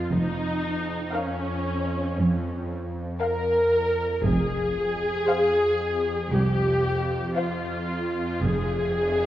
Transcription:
Already playing: F4
0.09 F1 F2 D#4
1.14 C#4 A#4 F5
2.18 F2
3.21 A#4 F5
4.24 F1 F2 G#4, taiko
5.28 C5 F5
6.32 C2 G4
7.37 F4 C5 F5
8.42 F1 F2 G#4, cymbal swell

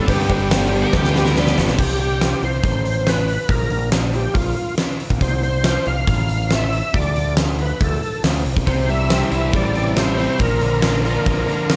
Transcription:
Already playing: G3 D4 G4 B5
0.07 G2 D3 G3 B3 G4 B4, kick, open hi-hat, cowbell
0.11 D4 G4
0.30 G1 G3 B3 D4 G4, kick, cowbell
0.51 G2 D3 G3 B3 D4 G4, snare, open hi-hat, cowbell
0.72 G3 B3 D4 G4
0.82 B3 D4 G4 A#4
0.87 G3
0.93 D2 G2 D3 G3 B3 D4 G4, kick, snare, cowbell
1.05 G3 B3 D4 G4, snare
1.11 F4 B4
1.15 G3 B3 D4 G4, snare, cowbell
1.24 D4 G4 A#4, snare
1.28 G3 B3
1.36 G2 D3 G3 B3 D4 G4 B4, snare, cowbell
1.40 G4
1.47 snare
1.57 G1 G3 B3 D4, snare
1.62 G4
1.68 B1, snare
1.79 C2 G4, kick, crash
2.00 G4, open hi-hat
2.21 snare, open hi-hat
2.43 C2 C5, open hi-hat
2.63 A1, kick, open hi-hat
2.85 open hi-hat
3.07 B4, snare, open hi-hat
3.28 open hi-hat
3.49 A#1 A#4, kick, open hi-hat
3.70 A#1, open hi-hat
3.92 snare, open hi-hat
4.13 G4, open hi-hat
4.34 A#1 F4, kick, open hi-hat
4.56 open hi-hat
4.78 snare, open hi-hat
5.00 open hi-hat
5.10 A#1, kick
5.21 C2 C5, kick, open hi-hat
5.43 C5, open hi-hat
5.64 snare, open hi-hat
5.85 C2 F5, open hi-hat
6.07 A1, kick, open hi-hat
6.29 open hi-hat
6.51 snare, open hi-hat
6.55 E5
6.72 open hi-hat
6.94 D2 D5, kick, open hi-hat
7.16 D2, open hi-hat
7.37 snare, open hi-hat
7.59 B4, open hi-hat
7.81 D2 A4, kick, open hi-hat
8.03 open hi-hat
8.24 D2, snare, open hi-hat
8.45 C2, open hi-hat
8.57 kick
8.66 C2 C3 G3 C4 E4 G4 C5, kick, open hi-hat
8.88 E3 G3 C4 E4 G4 E5, open hi-hat
9.10 C3 G3 C4 E4 G4, snare, open hi-hat
9.30 C2 G3 C4 E4 G4 E5, open hi-hat
9.41 C4 E4 G4
9.51 A1 C3 G3 C4 E4 G4, kick, open hi-hat
9.56 D5
9.62 C4 E4 G4
9.73 C3 G3 C4 E4 G4, open hi-hat
9.95 G3 E4 C5, snare, open hi-hat
10.17 G3 C4 E4 G4, open hi-hat
10.27 C4 E4 G4
10.38 A#1 A#2 D3 F3 A#3 D4 A#4, kick, open hi-hat
10.42 F3
10.59 A#1 D3 F3 A#3 D4 A#4, open hi-hat
10.82 A#2 D3 F3 A#3 D4 A#4, snare, open hi-hat
11.02 F3 A#3 D4 F4 A#4, open hi-hat
11.14 F3 A#3 D4 A#4
11.25 A#1 A#2 D3 F3 A#3 D4 A#4, kick, open hi-hat
11.37 F3 A#3 D4 A#4
11.47 D3 F3 A#3 D4 A#4, open hi-hat
11.67 F3 F4, snare, open hi-hat

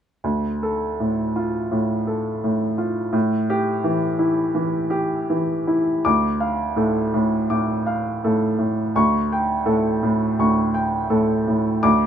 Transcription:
0.24 D2
0.63 A4
1.00 A2
1.36 F4
1.71 A2
2.07 A4
2.44 A2
2.78 F4
3.13 A2
3.50 G4
3.84 E3
4.19 E4
4.55 E3
4.90 G4
5.30 E3
5.67 E4
6.05 D2 D6
6.40 F5
6.76 A2 A4
7.14 A2
7.50 A2 D6
7.86 F5
8.24 A2 A4
8.58 A2
8.96 D2 C#6
9.32 G5
9.66 A2 A4
10.03 A2
10.39 D2 C#6
10.74 G5
11.10 A2 A4
11.48 A2
11.83 D2 D6

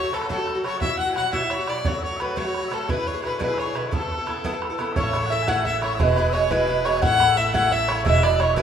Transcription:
Already playing: C#5
0.01 A3 F#4 C#5
0.05 F#3
0.11 C#3 F#3 A3 F#4 A4, bodhran
0.21 bodhran
0.26 C#3 B4, bodhran
0.30 F#3 A3 F#4 A4
0.37 F#3 A3 F#4
0.47 bodhran
0.55 F#3 A3 F#4
0.64 C#3 F#3 A3 F#4 C#5, bodhran
0.78 B2 E5 F#5, bodhran
0.82 F#3 E4 F#4 E5
0.89 F#3 E4 F#4
0.99 F#5, bodhran
1.07 F#3 E4 F#4
1.13 B2 F#3 F#5 G#5, bodhran
1.17 E4 F#4
1.32 B2 F#3 E4 F#4 E5, bodhran
1.42 F#3 E4 F#4
1.50 C#5, bodhran
1.59 F#3 E4 F#4
1.67 B2 F#3 E4 F#4 D5, bodhran
1.84 C#3 F#3 A3 F#4 C#5, bodhran
1.93 F#3 A3 F#4
1.99 E5, bodhran
2.03 C#5
2.11 F#3 A3 F#4
2.16 C#3 B4 E5, bodhran
2.21 F#3 A3 F#4 B4
2.36 C#3 F#3 A3 F#4 C#5, bodhran
2.44 F#3 A3 F#4
2.54 bodhran
2.62 F#3 A3 F#4
2.68 C#3 F#3 A3 E5, bodhran
2.72 F#4 A4
2.87 B2 D3 E4 G#4 B4 C#5, bodhran
2.97 D3 E4 G#4
3.06 C#5, bodhran
3.14 D3 E4 G#4
3.21 B2 D3 E4 G#4 B4 C#5, bodhran
3.38 B2 D3 E4 G#4 B4 C#5, bodhran
3.48 D3 E4 G#4
3.54 E5, bodhran
3.58 C#5
3.66 D3 E4 G#4
3.74 B2 D3 E4 G#4 B4, bodhran
3.88 C#3 B3 C#5
3.92 E4 A4, bodhran
4.00 B3 E4 A4
4.08 B4 C#5, bodhran
4.16 E4 A4
4.20 B3
4.26 C#3 B3 E4 A4, bodhran
4.34 G#4 A4
4.44 C#3 B3 E4 A4, bodhran
4.52 B3 E4 A4
4.62 bodhran
4.70 B3 E4 A4
4.78 C#3 B3 E4 A4, bodhran
4.93 A1 C#3 C#5 E5, bodhran
4.97 A3 E4 A4 C#5
5.13 C#3 A3 E4 A4, bodhran
5.26 E5 F#5
5.30 C#3 A3 E4 A4 E5
5.43 G#5
5.47 C#3 A3 E4 A4 F#5, bodhran
5.60 E5 G#5
5.64 C#3 A3 E4 A4 E5, bodhran
5.78 C#3 C#5 F#5
5.82 A3 E4 A4 C#5, bodhran
5.95 B4 E5
5.99 E1 B2 G#3 E4 G#4 B4, bodhran
6.12 B4 C#5, bodhran
6.17 B2 G#3 E4 G#4 B4
6.30 B2 C#5 E5
6.34 G#3 E4 G#4 C#5
6.50 B2 G#3 E4 G#4 B4, bodhran
6.67 B2 G#3 E4 G#4, bodhran
6.84 B2 G#3 E4 G#4 C#5, bodhran
6.97 G#5
7.02 A1 C#3 A3 E4 A4 F#5, bodhran
7.19 C#3 A3 E4 A4, bodhran
7.36 C#3 A3 E4 A4 E5
7.54 C#3 A3 E4 A4 F#5, bodhran
7.68 C#3 A3 E5 G#5, bodhran
7.72 E4 A4 E5
7.88 C#3 A3 E4 A4 C#5, bodhran
8.05 E1 B2 G#3 E4 G#4 E5, bodhran
8.19 B2 G#3 E4 G#4 D5 F#5, bodhran
8.23 D5
8.36 B2 G#3 E5, bodhran
8.40 E4 G#4 C#5
8.54 B2 G#3 E4 G#4 B4 E5, bodhran

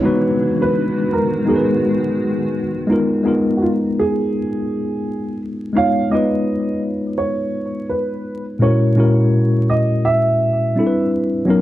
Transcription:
Already playing: C#5
0.01 D#3 G#3 B3 D#4 F#4
0.05 B4
0.62 B4
1.13 A#4
1.45 G#3 B3 D#4 F#4 G#4
1.50 A#4
1.56 B4
2.87 G#3 B3 D#4 F4
2.92 A#4
3.23 G#3 B3 D#4 F4
3.28 A#4
3.57 F#4
3.62 F4
3.99 G#4
5.73 G#3 B3 D#4 F4 F5
5.78 C#5
6.10 G#3 B3 D#4 F4 D#5
6.15 B4
7.18 C#5
7.89 B4
8.59 A#2 G#3 C#4 E4 F#4 C#5
8.64 A#4
8.95 A#2 G#3 C#4 E4 F#4
9.00 A#4
9.70 D#5
10.05 E5
10.75 G3 C4 D4 E4
10.80 A4
10.86 B4
11.45 F#3 B3 C#4 D#4
11.50 A#4

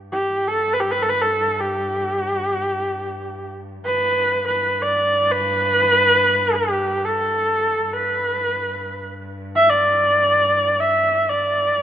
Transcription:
Already playing: G2
0.12 G4
0.48 A4
0.73 B4
0.80 G4
0.91 B4
1.02 A4
1.09 B4
1.22 A4
1.60 G4
3.86 G2 B4
4.48 B4
4.83 D5
5.32 B4
6.54 G4
7.05 A4
7.82 G2
7.93 B4
9.56 E5
9.69 D5
10.80 E5
11.29 D5
11.78 G2

